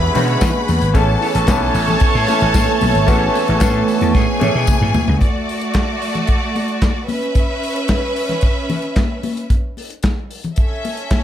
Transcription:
Already playing: D3 G#3 B3 C#4 F#4 G4 G#4 B4 C#5 E5 F#5 B5 C#6
0.01 muted clean electric guitar stroke
0.14 B2 D3 G#3 B3 C#4 D4 F#4 G#4 C#5, open hi-hat, tambourine, muted conga, low conga
0.27 D4 G#4 C#5, closed hi-hat
0.41 E3, muted clean electric guitar stroke, kick, snare, clap, closed hi-hat, tambourine, high conga
0.55 muted clean electric guitar stroke, high conga
0.68 E2, open hi-hat, tambourine, high conga
0.81 G#1, muted clean electric guitar stroke, closed hi-hat
0.94 A1 E3 A3 B3 C#4 E4 G#4 A4 C#5 E5 A5 C#6, kick, closed hi-hat, tambourine, muted conga
1.21 E4 G#4 C#5, open hi-hat
1.35 A1 E4 G#4 C#5, closed hi-hat
1.47 B1 E3 A3 B3 C#4 B4, muted clean electric guitar stroke, kick, snare, clap, closed hi-hat, tambourine, high conga
1.61 muted clean electric guitar stroke
1.75 A1, open hi-hat, tambourine
1.88 muted clean electric guitar stroke, snare, closed hi-hat, low conga
2.00 muted clean electric guitar stroke, muted slap bass stroke, kick, closed hi-hat, tambourine
2.14 A2, muted clean electric guitar stroke
2.27 E3 A3 B3 C#4 E4, open hi-hat, tambourine, muted conga
2.41 A1, closed hi-hat
2.54 A2, kick, snare, clap, closed hi-hat, tambourine, high conga
2.68 muted clean electric guitar stroke, high conga
2.81 B1, open hi-hat, tambourine, high conga
2.94 G#1, muted clean electric guitar stroke, closed hi-hat
3.06 A1 E3 A3 B3 C#4 E4 F#4 G#4 C#5, kick, closed hi-hat, tambourine, muted conga
3.34 E4 G#4 C#5, open hi-hat, tambourine, muted conga
3.47 A1 E4 G#4 C#5, closed hi-hat
3.60 E3 A3 B3 C#4 A4, kick, snare, clap, closed hi-hat, tambourine, high conga
3.74 muted clean electric guitar stroke
3.88 open hi-hat, tambourine
4.00 E2, muted clean electric guitar stroke, closed hi-hat, low conga
4.14 A2 G#4 G#5, muted clean electric guitar stroke, kick, snare, tambourine
4.28 muted clean electric guitar stroke
4.39 A2 E3 A3 B3 C#4 E4 G#4 C#5, high tom, tambourine, muted conga, low conga
4.54 B2, muted clean electric guitar stroke
4.67 muted clean electric guitar stroke, kick, mid tom, tambourine, high conga
4.81 A2, muted clean electric guitar stroke, mid tom, high conga
4.94 floor tom, tambourine, high conga
5.08 C#2, muted clean electric guitar stroke, floor tom
5.21 A3 F#4 D5, kick, closed hi-hat, muted conga
5.49 open hi-hat
5.61 closed hi-hat
5.74 kick, snare, clap, closed hi-hat, high conga
6.02 open hi-hat
6.15 closed hi-hat, low conga
6.27 kick, closed hi-hat
6.56 open hi-hat, muted conga
6.68 closed hi-hat
6.82 kick, snare, clap, closed hi-hat, high conga
7.08 C#4 B4 E5, open hi-hat, high conga
7.22 closed hi-hat
7.35 kick, closed hi-hat, muted conga
7.63 open hi-hat
7.76 closed hi-hat
7.88 kick, snare, clap, closed hi-hat, high conga
8.16 open hi-hat
8.29 snare, closed hi-hat, low conga
8.41 kick, closed hi-hat
8.69 open hi-hat, muted conga, low conga
8.82 closed hi-hat
8.96 kick, snare, clap, closed hi-hat, high conga
9.23 open hi-hat, high conga
9.37 closed hi-hat
9.50 kick, closed hi-hat, muted conga
9.77 open hi-hat, muted conga
9.90 closed hi-hat
10.03 kick, snare, clap, closed hi-hat, high conga
10.31 open hi-hat
10.44 closed hi-hat, low conga
10.56 C#4 A4 E5, kick, closed hi-hat
10.85 open hi-hat, muted conga
10.97 closed hi-hat
11.11 kick, snare, clap, closed hi-hat, high conga

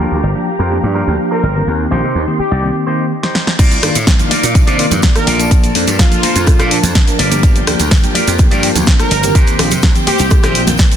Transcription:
Already playing: G4 F5 A#5
0.00 F3 A#3 D4 F4 G4 A#4
0.12 D2
0.23 G1
0.35 F3 A#3 D4 G4
0.59 F2 F4 G4 A#4
0.71 F3 A#3 D4 G4
0.83 G2
0.95 F3 A#3 D4 F4 G4 A#4
1.07 D2
1.31 F3 A#3 D4 F4 G4 A4 A#4
1.43 G1
1.55 D#3 A#3 C4 G4
1.67 D#2 D#4 C6
1.91 A#1 D#3 A#3 C4 D#4 G4 C5
2.03 C3
2.15 D#2
2.27 D#3 A#3 C4 G4
2.39 G4, muted slap bass stroke
2.51 C2 D#4 G4 D5
2.63 D#3 A#3 C4 G4
2.87 D#3 A#3 C4 D#4 G4 C5
3.23 D#4 G4 C5, snare
3.35 snare
3.47 snare
3.59 C2 A#3 D#4 F4 A#4 D5 F5, kick, closed hi-hat, crash, tambourine, shaker
3.71 closed hi-hat, tambourine, shaker
3.82 G2 D#3 A#3 D4 F4, cross-stick, open hi-hat
3.95 A2, closed hi-hat, tambourine, shaker
4.07 C2, kick, snare, closed hi-hat, tambourine, shaker
4.19 D#3 A#3 D4 F4, closed hi-hat, tambourine, low conga, shaker
4.31 D#4 F4 A#4 D5, open hi-hat, high conga
4.43 A#2, closed hi-hat, tambourine, shaker
4.55 D#3 A#3 D4 F4, kick, closed hi-hat, tambourine, shaker
4.67 C3 D#4 F4 A#4 D5, closed hi-hat, tambourine, shaker
4.78 D#3 A#3 F4 D5, open hi-hat
4.91 G2, closed hi-hat, tambourine, low conga, shaker
5.02 muted clean electric guitar stroke, kick, snare, closed hi-hat, tambourine, shaker
5.15 D#3 A#3 D4 G4 A#4, muted clean electric guitar stroke, cross-stick, closed hi-hat, tambourine, high conga, shaker
5.26 A#1 D4 F4 A4 A#4 D5 A5, open hi-hat
5.39 F3 A#3 D4 A5, closed hi-hat, tambourine, shaker
5.51 A#1, kick, closed hi-hat, shaker
5.64 closed hi-hat, tambourine, shaker
5.75 F2 F3 A#3 D4 A4, open hi-hat
5.87 G2, closed hi-hat, tambourine, shaker
5.99 A#1 F4, kick, snare, closed hi-hat, shaker
6.11 F3 A#3 D4 A4, closed hi-hat, tambourine, low conga, shaker
6.23 F4 A4 A#4 C5, muted slap bass stroke, open hi-hat, high conga
6.36 F2, closed hi-hat, tambourine, shaker
6.47 F3 A#3 D4 A4, kick, cross-stick, closed hi-hat, tambourine, high conga, shaker
6.59 A#2 F4 A4 A#4 F5, cross-stick, closed hi-hat, tambourine, shaker
6.71 F3 A#3 D4 A5, open hi-hat
6.83 F2, closed hi-hat, tambourine, high conga, low conga, shaker
6.95 muted clean electric guitar stroke, kick, snare, closed hi-hat, tambourine, shaker
7.07 F3 A#3 D4 A#4, muted clean electric guitar stroke, closed hi-hat, tambourine, shaker
7.19 G1 F4 G4 A#4 D5 G5, open hi-hat
7.31 F3 A#3 D4 G4, closed hi-hat, tambourine, high conga, shaker
7.43 G1, kick, closed hi-hat, tambourine, shaker
7.55 closed hi-hat, tambourine, shaker
7.67 D2 F3 A#3 D4 G4, cross-stick, open hi-hat
7.79 D2, closed hi-hat, tambourine, shaker
7.91 G1, kick, snare, closed hi-hat, tambourine, shaker
8.03 F3 A#3 D4 G4, closed hi-hat, tambourine, low conga, shaker
8.14 F4 G4 A#4 D5, open hi-hat, high conga
8.27 F2, closed hi-hat, tambourine, shaker
8.39 F3 A#3 D4 G4, kick, closed hi-hat, tambourine, shaker
8.51 G2 F4 G4 A#4 D5, closed hi-hat, tambourine, shaker
8.63 F3 A#3 D4 G4, open hi-hat
8.75 D2, closed hi-hat, tambourine, low conga, shaker
8.86 muted clean electric guitar stroke, kick, snare, closed hi-hat, tambourine, shaker
8.99 F3 A#3 D4 A4 A#4, muted clean electric guitar stroke, cross-stick, closed hi-hat, tambourine, high conga, shaker
9.11 G1, muted clean electric guitar stroke, open hi-hat
9.23 D#3 A#3 C4 G4, closed hi-hat, tambourine, shaker
9.35 D#2 C4 D#4 G4 A#4 C5 G5, kick, closed hi-hat, tambourine, shaker
9.47 closed hi-hat, tambourine, shaker
9.59 A#1 D#3 A#3 C4 G4, cross-stick, open hi-hat
9.71 C3, closed hi-hat, tambourine, low conga, shaker
9.82 D#2, kick, snare, closed hi-hat, tambourine, shaker
9.95 D#3 A#3 C4 G4, closed hi-hat, tambourine, low conga, shaker
10.07 D#4 G4 A#4 C5, muted slap bass stroke, open hi-hat, high conga
10.18 C2, closed hi-hat, tambourine, shaker
10.30 D#3 A#3 C4 G4, kick, cross-stick, closed hi-hat, tambourine, high conga, shaker
10.43 A#1 D#4 G4 A#4 C5, cross-stick, snare, closed hi-hat, tambourine, shaker
10.55 open hi-hat
10.67 A#1 D#3 A#3 C4 A#4, closed hi-hat, tambourine, high conga, low conga, shaker
10.77 muted clean electric guitar stroke, kick, snare, closed hi-hat, tambourine, shaker
10.91 muted clean electric guitar stroke, closed hi-hat, tambourine, shaker

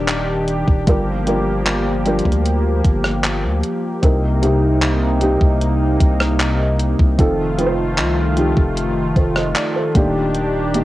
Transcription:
Already playing: D#1 D#3 A#3 D4 G4
0.08 clap, closed hi-hat
0.48 closed hi-hat
0.68 D#1, kick
0.87 G1 F3 G3 A#3 D4 F4 A#4, kick, closed hi-hat
1.26 G3 D4 F4 A#4, closed hi-hat
1.66 clap, closed hi-hat
2.05 G3 D4 F4 A#4, closed hi-hat
2.19 closed hi-hat
2.25 D2, kick
2.32 closed hi-hat
2.46 closed hi-hat
2.85 G1, kick, closed hi-hat
3.04 cross-stick
3.24 clap, closed hi-hat
3.44 D2
3.63 closed hi-hat
4.02 C2 C3 A#3 C4 D#4 A#4, kick, closed hi-hat
4.42 C3 C4 D#4 G4, closed hi-hat
4.82 clap, closed hi-hat
5.21 C3 C4 D#4 G4, closed hi-hat
5.41 C2, kick
5.61 closed hi-hat
6.00 C2, kick, closed hi-hat
6.20 cross-stick
6.40 clap, closed hi-hat
6.79 closed hi-hat
6.99 C2, kick
7.18 F1 D#3 F3 A3 C4 D#4 F4 A4, kick, closed hi-hat
7.58 F3 C4 D#4 B4, closed hi-hat
7.66 C5
7.98 C2, clap, closed hi-hat
8.37 F3 C4 D#4 G4, closed hi-hat
8.57 F1, kick
8.77 closed hi-hat
9.16 F1 A4 C5, kick, closed hi-hat
9.36 C5 D#5, cross-stick
9.56 D5, clap, closed hi-hat
9.76 A4 C5
9.95 D#1 D#3 A#3 D4 G4, kick, closed hi-hat
10.35 closed hi-hat
10.74 D#3 A#3 D4 G4, closed hi-hat

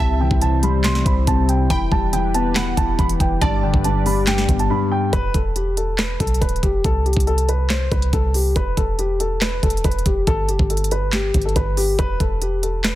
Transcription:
Already playing: E4
0.00 C2 C3 G3 C5 E5 A5
0.20 E3 G5
0.31 C2, kick
0.41 C3 A5, closed hi-hat
0.63 G3 B5, closed hi-hat
0.84 C3 C6, snare, clap, closed hi-hat
0.95 snare
1.06 C2 C4 B5, kick, closed hi-hat
1.27 C2 C3 A5, kick, closed hi-hat
1.49 G5, closed hi-hat
1.70 E1 E3 G4 B4 G5 B5, kick, closed hi-hat
1.92 E1 G3 A5, kick
2.13 E3 G5, closed hi-hat
2.34 B3 A5, closed hi-hat
2.55 E3 F#5 B5, snare, clap, closed hi-hat
2.77 E1 E4 A5, kick, closed hi-hat
2.99 E1 E3 B5, kick, closed hi-hat
3.09 closed hi-hat
3.20 E1 G5, kick, closed hi-hat
3.41 G1 G2 G3 B4 D5 A5, kick, closed hi-hat
3.63 F#1 D3 G5
3.74 G1, kick
3.84 G2 A5, closed hi-hat
4.06 G3 B5, open hi-hat
4.27 G2 G5, snare, clap, closed hi-hat
4.38 snare
4.49 G1 B3, kick, closed hi-hat
4.59 A5, closed hi-hat
4.70 G2 B5
4.92 G5
5.13 E1 B4, kick, closed hi-hat
5.34 E1 A4, kick, closed hi-hat
5.56 G4, closed hi-hat
5.77 A4, closed hi-hat
5.98 B4, snare, clap, closed hi-hat
6.20 B1 A4, kick, closed hi-hat
6.27 closed hi-hat
6.34 closed hi-hat
6.41 D1 B4, kick, closed hi-hat
6.49 closed hi-hat
6.56 closed hi-hat
6.63 E1 G4, kick, closed hi-hat
6.84 C2 A4, kick, closed hi-hat
7.06 G4, closed hi-hat
7.13 C2, kick, closed hi-hat
7.20 closed hi-hat
7.27 A4, closed hi-hat
7.38 closed hi-hat
7.49 B4, closed hi-hat
7.70 C5, snare, clap, closed hi-hat
7.92 C2 B4, kick, closed hi-hat
8.02 closed hi-hat
8.13 C2 A4, kick, closed hi-hat
8.34 G4, open hi-hat
8.56 E1 B4, kick, closed hi-hat
8.77 E1 A4, kick, closed hi-hat
8.99 G4, closed hi-hat
9.20 A4, closed hi-hat
9.41 B4, snare, clap, closed hi-hat
9.63 E1 A4, kick, closed hi-hat
9.70 closed hi-hat
9.77 closed hi-hat
9.84 E1 B4, kick, closed hi-hat
9.92 closed hi-hat
9.99 closed hi-hat
10.06 E1 G4, kick, closed hi-hat
10.27 G1 A4, kick, closed hi-hat
10.49 F#1 G4, closed hi-hat
10.59 G1, kick
10.70 A4, closed hi-hat
10.77 closed hi-hat
10.84 closed hi-hat
10.91 B4, closed hi-hat
11.13 G4, snare, clap, closed hi-hat
11.34 G1, kick, closed hi-hat
11.42 A4, closed hi-hat
11.49 closed hi-hat
11.56 G1 B4, kick, closed hi-hat
11.77 G4, open hi-hat
11.99 E1 B4, kick, closed hi-hat
12.20 E1 A4, kick, closed hi-hat
12.42 G4, closed hi-hat
12.63 A4, closed hi-hat
12.84 B4, snare, clap, closed hi-hat

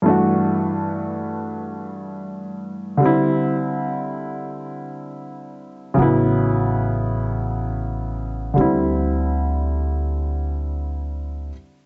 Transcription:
0.02 G2 E3 A3
0.07 D4 F#4
2.97 D3 G3
3.03 C4 E4
5.94 C#3 F#3
5.98 A1 B3 E4
8.54 D2 D3 G3
8.59 C4 E4

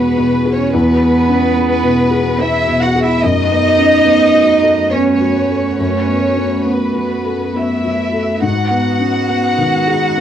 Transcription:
Already playing: E2 B2 G#3 B3 C#4 F#4 G#4 B4
0.18 B2
0.45 G#4
0.52 C#4 C#5
0.72 E2 B3 B4
1.02 B3
1.29 C#4
1.58 B3
1.83 B2
2.11 G#4
2.39 B3 E4 E5
2.67 B2
2.82 F#4 F#5
2.95 G#4
3.02 E4 E5
3.22 F#2 A3 D#4 F#4 B4 D#5
3.52 B3
3.79 C#4
4.05 B3
4.34 F#3
4.63 A4
4.91 B3 C#4 C#5
5.20 F#3
5.50 A4
5.78 F#2 C#4 C#5
6.07 B3
6.36 C#4
6.64 B3 B4
6.94 F#3
7.25 A4
7.55 B3 E4 E5
7.85 F#3
8.13 A4
8.42 G#2 G#3 D#4 F#4 B4 F#5
8.71 B3
8.99 C#4
9.30 B3
9.58 D#3
9.87 G#4
10.17 B3

